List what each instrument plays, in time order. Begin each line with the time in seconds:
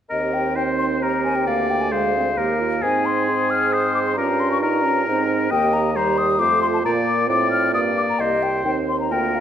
0.09 bassoon D#2, french horn C4, clarinet G4, oboe A#4, flute D#5
0.34 flute G5
0.56 clarinet D#4, oboe C5, flute G5
0.79 flute C6
1.02 clarinet G4, oboe A#4, flute A#5
1.24 flute G#5
1.36 flute G5
1.46 bassoon D2, french horn A#3, oboe D5, flute F5
1.70 flute G5
1.81 flute G#5
1.92 french horn G#3, clarinet G#4, oboe C5, flute F5
2.16 french horn C4
2.38 bassoon D#2, french horn A#3, clarinet G4, oboe A#4
2.61 clarinet F4
2.82 bassoon G#2, french horn C4, clarinet D#4, oboe G#4, flute G#5
3.06 flute C6
3.27 clarinet G#4, flute C6
3.50 flute F6
3.72 oboe C5, flute D#6
3.94 flute D6
4.06 flute C6
4.16 bassoon G2, french horn C#4, clarinet F4, oboe A#4, flute A#5
4.40 flute C6
4.52 flute C#6
4.62 french horn D#4, oboe A#4, flute A#5
4.84 french horn C#4
5.07 bassoon G#2, french horn C4, clarinet D#4
5.50 bassoon D#2, french horn A#3, clarinet G4, oboe D#5, flute G5
5.73 flute A#5
5.95 french horn G3, clarinet G4, oboe C5, flute A#5
6.18 flute D#6
6.39 bassoon F2, french horn A3, clarinet F4, oboe C5, flute D6
6.62 flute C6
6.74 flute A5
6.84 bassoon A#2, french horn A#3, clarinet F4, oboe D5, flute A#5
7.07 flute D6
7.28 bassoon A2, french horn C4, clarinet F4, oboe D5, flute D6
7.51 flute F6
7.74 bassoon G2, french horn A#3, oboe D5, flute D#6
7.97 flute D6
8.10 flute A#5
8.19 bassoon C2, clarinet G4, oboe C5, flute D#5
8.43 flute G5
8.64 bassoon D#2, french horn C4, clarinet D#4, flute G5
8.88 flute C6
9.00 flute A#5
9.11 bassoon D2, french horn A#3, clarinet F4, oboe A#4, flute G5
9.35 flute F5